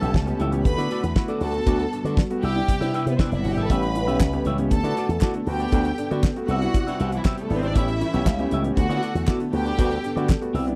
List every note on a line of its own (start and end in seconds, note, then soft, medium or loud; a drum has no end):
0.00 0.11 B1 loud
0.00 0.64 G3 medium
0.00 1.39 A3 medium
0.00 0.14 B3 medium
0.00 0.64 C#4 medium
0.00 0.14 C#4 medium
0.00 0.13 C#4 soft
0.00 0.15 G4 medium
0.00 0.14 G4 medium
0.00 0.38 A4 medium
0.00 0.14 A4 medium
0.00 0.14 E5 medium
0.00 0.38 A5 medium
0.00 closed hi-hat soft
0.14 0.32 C#2 medium
0.14 muted clean electric guitar stroke soft
0.14 kick loud
0.14 snare loud
0.26 0.40 B3 medium
0.26 0.40 C#4 medium
0.26 0.40 G4 medium
0.26 muted clean electric guitar stroke medium
0.26 closed hi-hat soft
0.39 0.65 C#2 medium
0.39 0.52 A2 medium
0.39 0.53 E3 medium
0.39 0.59 C#4 medium
0.39 0.54 G4 medium
0.39 0.53 A4 medium
0.39 0.52 E5 medium
0.39 closed hi-hat medium
0.51 0.65 B3 medium
0.51 0.65 C#4 medium
0.51 0.65 G4 medium
0.51 muted clean electric guitar stroke soft
0.51 closed hi-hat soft
0.64 0.74 D2 loud
0.64 0.78 D3 medium
0.64 1.41 D3 medium
0.64 0.78 A3 medium
0.64 3.67 B3 medium
0.64 2.41 F#4 medium
0.64 1.15 B4 medium
0.64 1.14 B5 loud
0.64 muted clean electric guitar stroke soft
0.64 kick loud
0.64 closed hi-hat medium
0.77 0.86 D3 medium
0.77 0.90 B3 medium
0.77 0.89 E4 medium
0.77 0.89 F#4 medium
0.77 0.90 F#4 medium
0.77 0.91 A4 medium
0.77 0.91 D5 medium
0.77 snare soft
0.77 closed hi-hat medium
0.90 1.10 B3 medium
0.90 0.95 E4 soft
0.90 0.95 F#4 soft
0.90 1.04 F#4 medium
0.90 1.04 A4 medium
0.90 1.03 D5 loud
0.90 closed hi-hat medium
1.03 1.12 E2 medium
1.03 muted clean electric guitar stroke soft
1.03 closed hi-hat medium
1.15 1.29 E4 medium
1.15 1.29 F#4 medium
1.15 muted clean electric guitar stroke soft
1.15 kick loud
1.15 snare loud
1.28 1.41 D3 medium
1.28 1.41 A3 medium
1.28 1.42 B3 medium
1.28 1.41 F#4 medium
1.28 1.43 A4 medium
1.28 1.42 D5 medium
1.28 closed hi-hat soft
1.40 1.59 D2 medium
1.40 4.68 G3 medium
1.40 1.54 B3 medium
1.40 1.57 D4 medium
1.40 1.54 F#4 medium
1.40 2.16 A4 medium
1.40 1.54 B4 medium
1.40 1.53 D5 medium
1.40 2.16 A5 medium
1.40 open hi-hat medium
1.54 muted clean electric guitar stroke soft
1.54 closed hi-hat soft
1.66 1.84 D2 medium
1.66 1.79 A3 medium
1.66 1.79 B3 medium
1.66 1.86 D4 medium
1.66 1.80 F#4 medium
1.66 1.79 B4 medium
1.66 1.78 D5 medium
1.66 kick loud
1.66 closed hi-hat medium
1.79 muted clean electric guitar stroke soft
1.79 closed hi-hat soft
1.92 2.05 G2 medium
1.92 2.05 D3 medium
1.92 muted clean electric guitar stroke soft
1.92 closed hi-hat medium
2.04 2.22 D3 medium
2.04 2.18 A3 medium
2.04 2.18 B3 medium
2.04 2.16 D4 medium
2.04 2.18 F#4 medium
2.04 2.17 F#4 medium
2.04 2.17 B4 medium
2.04 2.17 D5 medium
2.04 closed hi-hat soft
2.17 muted clean electric guitar stroke soft
2.17 kick loud
2.17 snare loud
2.30 2.43 A3 medium
2.30 2.43 B3 medium
2.30 2.43 F#4 medium
2.30 muted clean electric guitar stroke soft
2.30 closed hi-hat soft
2.43 2.61 C2 medium
2.43 2.56 C3 medium
2.43 3.69 C3 medium
2.43 2.56 G3 medium
2.43 2.62 E4 medium
2.43 3.69 E4 medium
2.43 3.04 G4 loud
2.43 2.56 G4 medium
2.43 2.55 B4 medium
2.43 2.55 E5 medium
2.43 3.04 G5 loud
2.43 open hi-hat medium
2.55 2.68 B3 medium
2.55 2.69 D4 medium
2.55 2.69 E4 medium
2.55 muted clean electric guitar stroke soft
2.55 closed hi-hat soft
2.68 2.81 C3 medium
2.68 2.81 G3 medium
2.68 muted clean electric guitar stroke soft
2.68 kick loud
2.68 closed hi-hat medium
2.81 2.90 C3 medium
2.81 2.94 B3 medium
2.81 2.92 D4 medium
2.81 2.92 E4 medium
2.81 2.93 G4 medium
2.81 2.93 B4 medium
2.81 2.94 E5 medium
2.81 closed hi-hat medium
2.93 2.99 D4 soft
2.93 3.12 E4 medium
2.93 2.99 E4 soft
2.93 3.06 G4 medium
2.93 3.06 B4 medium
2.93 3.05 E5 loud
2.93 closed hi-hat medium
3.06 3.15 C3 medium
3.06 3.19 B3 medium
3.06 3.19 B4 medium
3.06 muted clean electric guitar stroke soft
3.06 closed hi-hat medium
3.18 3.27 C4 medium
3.18 3.32 D4 medium
3.18 3.38 E4 medium
3.18 3.32 E4 medium
3.18 3.31 G4 medium
3.18 3.30 B4 medium
3.18 3.27 C5 medium
3.18 3.30 E5 medium
3.18 kick loud
3.18 snare loud
3.27 3.36 D4 medium
3.27 3.35 D5 medium
3.31 3.41 F#1 medium
3.31 3.45 C3 medium
3.31 3.45 G3 medium
3.31 muted clean electric guitar stroke medium
3.31 closed hi-hat soft
3.35 3.44 E4 medium
3.35 3.44 E5 medium
3.44 3.53 G1 medium
3.44 3.57 D4 medium
3.44 3.57 E4 medium
3.44 3.52 F#4 medium
3.44 3.53 F#5 medium
3.44 muted clean electric guitar stroke soft
3.44 open hi-hat medium
3.52 3.61 G4 medium
3.52 3.61 G5 medium
3.57 3.66 G#1 medium
3.57 3.68 E4 medium
3.57 3.69 G4 medium
3.57 3.70 B4 medium
3.57 3.70 E5 medium
3.57 3.69 A5 medium
3.57 closed hi-hat soft
3.61 3.69 A4 medium
3.69 4.07 A1 loud
3.69 5.46 A3 medium
3.69 3.83 B3 medium
3.69 3.83 C#4 medium
3.69 4.71 C#4 medium
3.69 3.89 E4 medium
3.69 3.83 G4 medium
3.69 4.44 B4 medium
3.69 3.83 C#5 medium
3.69 3.82 E5 medium
3.69 4.44 B5 medium
3.69 kick loud
3.69 closed hi-hat medium
3.83 muted clean electric guitar stroke soft
3.83 closed hi-hat soft
3.95 4.08 A2 medium
3.95 4.08 E3 medium
3.95 muted clean electric guitar stroke soft
3.95 closed hi-hat medium
4.07 4.20 B1 medium
4.07 4.20 B3 medium
4.07 4.20 C#4 medium
4.07 4.19 E4 medium
4.07 4.21 G4 medium
4.07 4.20 G4 medium
4.07 4.20 C#5 medium
4.07 4.20 E5 medium
4.07 closed hi-hat soft
4.20 4.38 C#2 medium
4.20 muted clean electric guitar stroke soft
4.20 kick loud
4.20 snare loud
4.20 clap loud
4.33 4.46 B3 medium
4.33 4.46 C#4 medium
4.33 4.46 G4 medium
4.33 muted clean electric guitar stroke medium
4.33 closed hi-hat soft
4.45 4.71 C#2 medium
4.45 4.59 A2 medium
4.45 4.59 E3 medium
4.45 4.65 E4 medium
4.45 4.58 G4 medium
4.45 4.58 C#5 medium
4.45 4.57 E5 medium
4.45 closed hi-hat medium
4.58 4.72 B3 medium
4.58 4.72 C#4 medium
4.58 4.72 G4 medium
4.58 muted clean electric guitar stroke soft
4.58 closed hi-hat soft
4.71 4.80 D2 medium
4.71 5.47 D3 medium
4.71 4.84 D3 medium
4.71 4.84 A3 medium
4.71 6.47 B3 medium
4.71 6.47 A4 medium
4.71 5.21 A4 medium
4.71 5.21 A5 loud
4.71 muted clean electric guitar stroke soft
4.71 kick loud
4.71 closed hi-hat medium
4.83 4.92 D3 medium
4.83 4.97 B3 medium
4.83 4.96 B3 soft
4.83 4.96 E4 medium
4.83 4.96 F#4 medium
4.83 4.97 A4 medium
4.83 4.97 D5 medium
4.83 closed hi-hat medium
4.97 5.16 B3 medium
4.97 5.02 E4 soft
4.97 5.02 F#4 soft
4.97 5.10 F#4 medium
4.97 5.09 A4 medium
4.97 5.09 D5 medium
4.97 closed hi-hat medium
5.09 5.18 E2 medium
5.09 muted clean electric guitar stroke soft
5.09 closed hi-hat medium
5.21 5.41 B3 medium
5.21 5.35 E4 medium
5.21 5.35 F#4 medium
5.21 5.34 A4 medium
5.21 5.34 D5 medium
5.21 kick loud
5.21 snare loud
5.21 clap medium
5.34 5.48 D3 medium
5.34 5.48 A3 medium
5.34 muted clean electric guitar stroke soft
5.34 closed hi-hat soft
5.47 5.65 D2 medium
5.47 8.74 G3 medium
5.47 5.60 B3 medium
5.47 5.60 F#4 medium
5.47 6.22 G4 medium
5.47 6.22 G5 loud
5.47 muted clean electric guitar stroke soft
5.47 open hi-hat medium
5.60 5.72 D4 soft
5.60 5.72 F#4 medium
5.60 5.73 B4 soft
5.60 5.73 D5 medium
5.60 closed hi-hat soft
5.72 5.90 D2 loud
5.72 5.86 A3 medium
5.72 5.86 B3 medium
5.72 5.92 D4 medium
5.72 5.86 F#4 medium
5.72 5.85 F#4 medium
5.72 5.85 B4 loud
5.72 5.84 D5 medium
5.72 kick loud
5.72 closed hi-hat medium
5.85 muted clean electric guitar stroke soft
5.85 closed hi-hat soft
5.98 6.11 G2 medium
5.98 6.11 D3 medium
5.98 muted clean electric guitar stroke soft
5.98 closed hi-hat medium
6.11 6.29 D3 medium
6.11 6.24 A3 medium
6.11 6.24 B3 medium
6.11 6.23 D4 soft
6.11 6.24 F#4 medium
6.11 6.23 F#4 medium
6.11 6.24 B4 medium
6.11 6.24 D5 medium
6.11 closed hi-hat soft
6.23 kick loud
6.23 snare loud
6.23 clap loud
6.36 6.49 A3 medium
6.36 6.49 B3 medium
6.36 6.49 F#4 medium
6.36 muted clean electric guitar stroke soft
6.36 closed hi-hat soft
6.48 6.66 C2 medium
6.48 6.62 C3 medium
6.48 7.75 C3 medium
6.48 6.62 G3 medium
6.48 7.75 B3 medium
6.48 6.68 C4 medium
6.48 7.75 E4 medium
6.48 7.10 F#4 medium
6.48 6.61 G4 medium
6.48 6.61 B4 medium
6.48 6.60 E5 medium
6.48 7.10 F#5 loud
6.48 closed hi-hat medium
6.61 6.74 B3 medium
6.61 6.75 D4 medium
6.61 6.75 E4 medium
6.61 muted clean electric guitar stroke medium
6.61 closed hi-hat soft
6.74 6.87 C3 medium
6.74 6.87 G3 medium
6.74 muted clean electric guitar stroke soft
6.74 kick loud
6.74 closed hi-hat medium
6.87 7.00 B3 medium
6.87 6.98 C4 soft
6.87 6.99 D4 medium
6.87 6.99 E4 medium
6.87 6.99 G4 medium
6.87 7.00 B4 medium
6.87 7.00 E5 medium
6.87 closed hi-hat soft
7.00 7.18 C2 medium
7.00 7.19 C4 medium
7.00 7.05 D4 soft
7.00 7.05 E4 soft
7.00 7.12 G4 medium
7.00 7.12 B4 medium
7.00 7.11 E5 medium
7.00 closed hi-hat medium
7.12 muted clean electric guitar stroke soft
7.12 closed hi-hat medium
7.16 7.25 E3 soft
7.16 7.25 E4 medium
7.24 7.34 F#3 medium
7.24 7.44 C4 medium
7.24 7.33 F#4 medium
7.24 7.37 G4 medium
7.24 7.37 B4 medium
7.24 7.36 E5 medium
7.24 kick loud
7.24 snare loud
7.24 clap medium
7.34 7.42 G3 medium
7.34 7.42 G4 medium
7.34 muted clean electric guitar stroke soft
7.34 closed hi-hat soft
7.42 7.50 A3 medium
7.42 7.50 A4 medium
7.50 7.75 G#1 medium
7.50 7.63 B3 medium
7.50 7.59 B3 medium
7.50 7.63 D4 medium
7.50 7.63 E4 medium
7.50 7.59 B4 medium
7.50 muted clean electric guitar stroke soft
7.50 open hi-hat medium
7.59 7.67 C4 medium
7.59 7.67 C5 medium
7.63 7.75 C4 medium
7.63 7.74 G4 medium
7.63 7.76 B4 medium
7.63 7.76 E5 medium
7.63 closed hi-hat soft
7.67 7.76 D4 medium
7.67 7.76 D5 medium
7.75 8.02 A1 loud
7.75 8.77 A3 medium
7.75 7.88 B3 medium
7.75 7.89 C#4 medium
7.75 8.77 C#4 medium
7.75 7.95 E4 medium
7.75 8.50 E4 medium
7.75 7.89 G4 loud
7.75 7.89 G4 medium
7.75 7.88 C#5 medium
7.75 8.50 E5 medium
7.75 7.87 E5 loud
7.75 kick loud
7.75 closed hi-hat medium
7.88 muted clean electric guitar stroke soft
7.88 closed hi-hat soft
8.01 8.14 A2 medium
8.01 8.14 E3 medium
8.01 muted clean electric guitar stroke soft
8.01 closed hi-hat medium
8.13 8.23 B1 medium
8.13 8.27 B3 medium
8.13 8.27 C#4 medium
8.13 8.26 E4 medium
8.13 8.27 G4 medium
8.13 8.26 G4 medium
8.13 8.26 C#5 medium
8.13 8.27 E5 medium
8.13 closed hi-hat soft
8.26 8.44 C#2 medium
8.26 muted clean electric guitar stroke soft
8.26 kick loud
8.26 snare loud
8.26 clap loud
8.39 8.52 B3 medium
8.39 8.52 C#4 medium
8.39 8.52 G4 medium
8.39 muted clean electric guitar stroke medium
8.39 closed hi-hat soft
8.51 8.70 C#2 medium
8.51 8.65 A2 medium
8.51 8.65 E3 medium
8.51 8.71 E4 medium
8.51 8.64 G4 medium
8.51 8.64 C#5 medium
8.51 8.63 E5 medium
8.51 closed hi-hat medium
8.64 8.77 B3 medium
8.64 8.77 C#4 medium
8.64 8.77 G4 medium
8.64 muted clean electric guitar stroke soft
8.64 closed hi-hat soft
8.76 8.86 D2 loud
8.76 8.90 D3 medium
8.76 9.53 D3 medium
8.76 8.90 A3 medium
8.76 9.53 A3 medium
8.76 10.75 B3 medium
8.76 9.27 F#4 medium
8.76 10.53 A4 medium
8.76 9.27 F#5 medium
8.76 muted clean electric guitar stroke soft
8.76 kick loud
8.76 closed hi-hat medium
8.89 8.98 D3 medium
8.89 9.02 B3 medium
8.89 9.00 B3 medium
8.89 9.01 E4 medium
8.89 9.01 F#4 medium
8.89 9.01 A4 medium
8.89 9.02 D5 medium
8.89 closed hi-hat soft
9.01 9.17 B3 medium
9.01 9.08 E4 soft
9.01 9.15 F#4 medium
9.01 9.08 F#4 soft
9.01 9.14 A4 medium
9.01 9.14 D5 medium
9.01 closed hi-hat medium
9.15 9.24 E2 medium
9.15 muted clean electric guitar stroke soft
9.15 closed hi-hat medium
9.27 9.47 B3 medium
9.27 9.40 E4 medium
9.27 9.41 F#4 medium
9.27 9.40 F#4 medium
9.27 9.40 A4 medium
9.27 9.39 D5 medium
9.27 kick loud
9.27 snare loud
9.27 clap medium
9.40 9.53 D3 medium
9.40 9.54 A3 medium
9.40 muted clean electric guitar stroke soft
9.40 closed hi-hat soft
9.52 9.71 D2 medium
9.52 10.75 G3 medium
9.52 9.66 B3 medium
9.52 9.66 F#4 medium
9.52 10.28 G4 medium
9.52 10.28 G5 medium
9.52 muted clean electric guitar stroke soft
9.52 open hi-hat medium
9.65 9.77 D4 soft
9.65 9.78 F#4 soft
9.65 9.79 B4 soft
9.65 9.79 D5 medium
9.65 closed hi-hat soft
9.78 9.96 D2 loud
9.78 9.91 A3 medium
9.78 9.91 B3 medium
9.78 9.98 D4 medium
9.78 9.92 F#4 medium
9.78 9.91 F#4 medium
9.78 9.90 B4 medium
9.78 9.90 D5 loud
9.78 kick loud
9.78 closed hi-hat medium
9.91 muted clean electric guitar stroke soft
9.91 closed hi-hat soft
10.04 10.17 G2 medium
10.04 10.17 D3 medium
10.04 muted clean electric guitar stroke soft
10.04 closed hi-hat medium
10.16 10.34 D3 loud
10.16 10.30 A3 medium
10.16 10.30 B3 medium
10.16 10.27 D4 soft
10.16 10.30 F#4 medium
10.16 10.28 F#4 medium
10.16 10.28 B4 medium
10.16 10.29 D5 medium
10.16 closed hi-hat soft
10.28 muted clean electric guitar stroke soft
10.28 kick loud
10.28 snare loud
10.28 clap medium
10.41 10.55 A3 medium
10.41 10.55 B3 medium
10.41 10.55 F#4 medium
10.41 muted clean electric guitar stroke soft
10.41 closed hi-hat soft
10.53 10.75 C2 medium
10.53 10.68 C3 medium
10.53 10.75 C3 medium
10.53 10.68 G3 medium
10.53 10.73 C4 medium
10.53 10.75 E4 medium
10.53 10.66 G4 medium
10.53 10.66 B4 medium
10.53 10.66 E5 medium
10.53 open hi-hat medium
10.67 10.75 B3 medium
10.67 10.75 D4 medium
10.67 10.75 E4 medium
10.67 muted clean electric guitar stroke soft
10.67 closed hi-hat soft